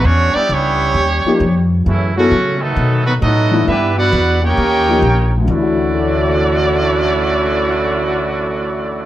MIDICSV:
0, 0, Header, 1, 6, 480
1, 0, Start_track
1, 0, Key_signature, 2, "major"
1, 0, Tempo, 452489
1, 62, Time_signature, 4, 2, 24, 8
1, 9606, End_track
2, 0, Start_track
2, 0, Title_t, "Trumpet section"
2, 0, Program_c, 0, 61
2, 47, Note_on_c, 0, 57, 89
2, 47, Note_on_c, 0, 73, 104
2, 51, Note_on_c, 0, 62, 87
2, 55, Note_on_c, 0, 66, 89
2, 366, Note_on_c, 0, 64, 90
2, 367, Note_on_c, 0, 67, 96
2, 368, Note_on_c, 0, 59, 88
2, 370, Note_on_c, 0, 74, 112
2, 371, Note_off_c, 0, 57, 0
2, 371, Note_off_c, 0, 73, 0
2, 373, Note_off_c, 0, 62, 0
2, 375, Note_off_c, 0, 66, 0
2, 521, Note_off_c, 0, 67, 0
2, 531, Note_off_c, 0, 59, 0
2, 534, Note_on_c, 0, 67, 90
2, 535, Note_off_c, 0, 64, 0
2, 537, Note_off_c, 0, 74, 0
2, 543, Note_on_c, 0, 59, 96
2, 544, Note_on_c, 0, 73, 115
2, 546, Note_on_c, 0, 64, 91
2, 1022, Note_off_c, 0, 59, 0
2, 1023, Note_off_c, 0, 64, 0
2, 1814, Note_off_c, 0, 67, 0
2, 1819, Note_off_c, 0, 73, 0
2, 1970, Note_on_c, 0, 57, 72
2, 1971, Note_on_c, 0, 64, 82
2, 1974, Note_on_c, 0, 61, 67
2, 1978, Note_on_c, 0, 54, 69
2, 2272, Note_off_c, 0, 57, 0
2, 2273, Note_off_c, 0, 64, 0
2, 2274, Note_off_c, 0, 61, 0
2, 2276, Note_off_c, 0, 54, 0
2, 2296, Note_on_c, 0, 57, 80
2, 2298, Note_on_c, 0, 61, 84
2, 2303, Note_on_c, 0, 66, 97
2, 2744, Note_off_c, 0, 57, 0
2, 2744, Note_off_c, 0, 61, 0
2, 2747, Note_off_c, 0, 66, 0
2, 2766, Note_on_c, 0, 63, 86
2, 2768, Note_on_c, 0, 69, 101
2, 2774, Note_on_c, 0, 59, 86
2, 2775, Note_on_c, 0, 54, 87
2, 3233, Note_off_c, 0, 63, 0
2, 3246, Note_on_c, 0, 63, 76
2, 3249, Note_on_c, 0, 66, 80
2, 3250, Note_on_c, 0, 57, 78
2, 3253, Note_off_c, 0, 69, 0
2, 3254, Note_on_c, 0, 71, 97
2, 3256, Note_off_c, 0, 54, 0
2, 3256, Note_off_c, 0, 59, 0
2, 3321, Note_off_c, 0, 63, 0
2, 3323, Note_off_c, 0, 57, 0
2, 3323, Note_off_c, 0, 66, 0
2, 3327, Note_off_c, 0, 71, 0
2, 3409, Note_on_c, 0, 59, 94
2, 3415, Note_on_c, 0, 66, 89
2, 3420, Note_on_c, 0, 69, 89
2, 3423, Note_on_c, 0, 75, 104
2, 3860, Note_off_c, 0, 59, 0
2, 3863, Note_off_c, 0, 66, 0
2, 3865, Note_off_c, 0, 69, 0
2, 3867, Note_off_c, 0, 75, 0
2, 3906, Note_on_c, 0, 76, 99
2, 3911, Note_on_c, 0, 67, 92
2, 3912, Note_on_c, 0, 71, 88
2, 3915, Note_on_c, 0, 62, 86
2, 4197, Note_off_c, 0, 76, 0
2, 4200, Note_off_c, 0, 67, 0
2, 4200, Note_off_c, 0, 71, 0
2, 4202, Note_off_c, 0, 62, 0
2, 4228, Note_on_c, 0, 71, 98
2, 4228, Note_on_c, 0, 78, 115
2, 4230, Note_on_c, 0, 74, 104
2, 4243, Note_on_c, 0, 64, 99
2, 4668, Note_off_c, 0, 71, 0
2, 4668, Note_off_c, 0, 78, 0
2, 4670, Note_off_c, 0, 74, 0
2, 4676, Note_off_c, 0, 64, 0
2, 4717, Note_on_c, 0, 79, 109
2, 4720, Note_on_c, 0, 73, 98
2, 4721, Note_on_c, 0, 63, 96
2, 4724, Note_on_c, 0, 70, 99
2, 5666, Note_off_c, 0, 79, 0
2, 5668, Note_off_c, 0, 63, 0
2, 5668, Note_off_c, 0, 73, 0
2, 5669, Note_off_c, 0, 70, 0
2, 5825, Note_on_c, 0, 66, 80
2, 5828, Note_on_c, 0, 57, 83
2, 5829, Note_on_c, 0, 64, 84
2, 5829, Note_on_c, 0, 74, 94
2, 9606, Note_off_c, 0, 57, 0
2, 9606, Note_off_c, 0, 64, 0
2, 9606, Note_off_c, 0, 66, 0
2, 9606, Note_off_c, 0, 74, 0
2, 9606, End_track
3, 0, Start_track
3, 0, Title_t, "Grand piano"
3, 0, Program_c, 1, 0
3, 1338, Note_on_c, 1, 53, 70
3, 1339, Note_on_c, 1, 58, 66
3, 1348, Note_on_c, 1, 63, 67
3, 1355, Note_on_c, 1, 67, 86
3, 1484, Note_off_c, 1, 53, 0
3, 1485, Note_off_c, 1, 58, 0
3, 1489, Note_off_c, 1, 63, 0
3, 1493, Note_off_c, 1, 67, 0
3, 2305, Note_on_c, 1, 54, 78
3, 2312, Note_on_c, 1, 59, 68
3, 2319, Note_on_c, 1, 64, 75
3, 2326, Note_on_c, 1, 69, 91
3, 2447, Note_off_c, 1, 54, 0
3, 2450, Note_off_c, 1, 59, 0
3, 2454, Note_off_c, 1, 64, 0
3, 2458, Note_off_c, 1, 69, 0
3, 3725, Note_on_c, 1, 52, 66
3, 3733, Note_on_c, 1, 57, 61
3, 3737, Note_on_c, 1, 62, 67
3, 3746, Note_on_c, 1, 64, 81
3, 3877, Note_off_c, 1, 52, 0
3, 3881, Note_off_c, 1, 57, 0
3, 3882, Note_off_c, 1, 62, 0
3, 3887, Note_off_c, 1, 64, 0
3, 5175, Note_on_c, 1, 58, 63
3, 5181, Note_on_c, 1, 53, 74
3, 5194, Note_on_c, 1, 63, 68
3, 5197, Note_on_c, 1, 67, 81
3, 5322, Note_off_c, 1, 58, 0
3, 5324, Note_off_c, 1, 53, 0
3, 5331, Note_off_c, 1, 63, 0
3, 5333, Note_off_c, 1, 67, 0
3, 5703, Note_on_c, 1, 38, 67
3, 5774, Note_on_c, 1, 50, 59
3, 5834, Note_on_c, 1, 52, 56
3, 5904, Note_on_c, 1, 64, 57
3, 5967, Note_on_c, 1, 66, 68
3, 6296, Note_on_c, 1, 69, 42
3, 6371, Note_on_c, 1, 73, 42
3, 6467, Note_on_c, 1, 76, 39
3, 6558, Note_on_c, 1, 81, 37
3, 6671, Note_on_c, 1, 85, 39
3, 6781, Note_on_c, 1, 88, 34
3, 6909, Note_on_c, 1, 93, 34
3, 9606, Note_off_c, 1, 38, 0
3, 9606, Note_off_c, 1, 50, 0
3, 9606, Note_off_c, 1, 52, 0
3, 9606, Note_off_c, 1, 64, 0
3, 9606, Note_off_c, 1, 66, 0
3, 9606, Note_off_c, 1, 69, 0
3, 9606, Note_off_c, 1, 73, 0
3, 9606, Note_off_c, 1, 76, 0
3, 9606, Note_off_c, 1, 81, 0
3, 9606, Note_off_c, 1, 85, 0
3, 9606, Note_off_c, 1, 88, 0
3, 9606, Note_off_c, 1, 93, 0
3, 9606, End_track
4, 0, Start_track
4, 0, Title_t, "Trombone section"
4, 0, Program_c, 2, 61
4, 45, Note_on_c, 2, 61, 94
4, 349, Note_on_c, 2, 55, 88
4, 350, Note_on_c, 2, 62, 87
4, 354, Note_on_c, 2, 59, 85
4, 370, Note_off_c, 2, 61, 0
4, 499, Note_off_c, 2, 62, 0
4, 505, Note_off_c, 2, 55, 0
4, 512, Note_on_c, 2, 62, 83
4, 516, Note_on_c, 2, 61, 93
4, 518, Note_on_c, 2, 55, 89
4, 529, Note_off_c, 2, 59, 0
4, 1006, Note_off_c, 2, 62, 0
4, 1804, Note_off_c, 2, 61, 0
4, 1805, Note_off_c, 2, 55, 0
4, 1959, Note_on_c, 2, 49, 80
4, 1965, Note_on_c, 2, 45, 75
4, 1969, Note_on_c, 2, 52, 76
4, 2263, Note_off_c, 2, 49, 0
4, 2266, Note_off_c, 2, 45, 0
4, 2271, Note_off_c, 2, 52, 0
4, 2276, Note_on_c, 2, 49, 78
4, 2277, Note_on_c, 2, 54, 82
4, 2279, Note_on_c, 2, 45, 73
4, 2733, Note_off_c, 2, 49, 0
4, 2733, Note_off_c, 2, 54, 0
4, 2734, Note_off_c, 2, 45, 0
4, 2760, Note_on_c, 2, 51, 83
4, 2761, Note_on_c, 2, 57, 87
4, 2762, Note_on_c, 2, 54, 87
4, 3235, Note_off_c, 2, 51, 0
4, 3238, Note_off_c, 2, 54, 0
4, 3244, Note_on_c, 2, 59, 73
4, 3248, Note_on_c, 2, 51, 79
4, 3250, Note_off_c, 2, 57, 0
4, 3251, Note_on_c, 2, 54, 72
4, 3319, Note_off_c, 2, 59, 0
4, 3322, Note_off_c, 2, 51, 0
4, 3325, Note_off_c, 2, 54, 0
4, 3386, Note_on_c, 2, 54, 85
4, 3388, Note_on_c, 2, 57, 85
4, 3393, Note_on_c, 2, 63, 89
4, 3847, Note_off_c, 2, 54, 0
4, 3848, Note_off_c, 2, 57, 0
4, 3851, Note_off_c, 2, 63, 0
4, 3888, Note_on_c, 2, 55, 89
4, 3889, Note_on_c, 2, 59, 91
4, 3890, Note_on_c, 2, 64, 98
4, 4187, Note_off_c, 2, 55, 0
4, 4188, Note_off_c, 2, 59, 0
4, 4189, Note_off_c, 2, 64, 0
4, 4205, Note_on_c, 2, 66, 99
4, 4210, Note_on_c, 2, 59, 91
4, 4212, Note_on_c, 2, 62, 90
4, 4656, Note_off_c, 2, 66, 0
4, 4659, Note_off_c, 2, 59, 0
4, 4660, Note_off_c, 2, 62, 0
4, 4684, Note_on_c, 2, 67, 98
4, 4691, Note_on_c, 2, 58, 97
4, 4692, Note_on_c, 2, 61, 98
4, 5649, Note_off_c, 2, 67, 0
4, 5653, Note_off_c, 2, 58, 0
4, 5654, Note_off_c, 2, 61, 0
4, 5815, Note_on_c, 2, 66, 108
4, 5816, Note_on_c, 2, 50, 101
4, 5819, Note_on_c, 2, 57, 99
4, 5819, Note_on_c, 2, 61, 101
4, 9606, Note_off_c, 2, 50, 0
4, 9606, Note_off_c, 2, 57, 0
4, 9606, Note_off_c, 2, 61, 0
4, 9606, Note_off_c, 2, 66, 0
4, 9606, End_track
5, 0, Start_track
5, 0, Title_t, "Upright bass"
5, 0, Program_c, 3, 32
5, 48, Note_on_c, 3, 40, 84
5, 349, Note_off_c, 3, 40, 0
5, 523, Note_on_c, 3, 37, 94
5, 993, Note_off_c, 3, 37, 0
5, 999, Note_on_c, 3, 39, 88
5, 1304, Note_off_c, 3, 39, 0
5, 1486, Note_on_c, 3, 41, 99
5, 1958, Note_off_c, 3, 41, 0
5, 1974, Note_on_c, 3, 42, 95
5, 2442, Note_off_c, 3, 42, 0
5, 2453, Note_on_c, 3, 49, 97
5, 2921, Note_off_c, 3, 49, 0
5, 2932, Note_on_c, 3, 47, 91
5, 3400, Note_off_c, 3, 47, 0
5, 3416, Note_on_c, 3, 45, 100
5, 3882, Note_off_c, 3, 45, 0
5, 3899, Note_on_c, 3, 43, 90
5, 4364, Note_off_c, 3, 43, 0
5, 4375, Note_on_c, 3, 40, 100
5, 4842, Note_off_c, 3, 40, 0
5, 4852, Note_on_c, 3, 39, 89
5, 5320, Note_off_c, 3, 39, 0
5, 5327, Note_on_c, 3, 34, 96
5, 5798, Note_off_c, 3, 34, 0
5, 5809, Note_on_c, 3, 38, 96
5, 9606, Note_off_c, 3, 38, 0
5, 9606, End_track
6, 0, Start_track
6, 0, Title_t, "Muted upright bass strokes"
6, 371, Note_on_c, 9, 29, 42
6, 477, Note_off_c, 9, 29, 0
6, 1324, Note_on_c, 9, 29, 43
6, 1430, Note_off_c, 9, 29, 0
6, 9606, End_track
0, 0, End_of_file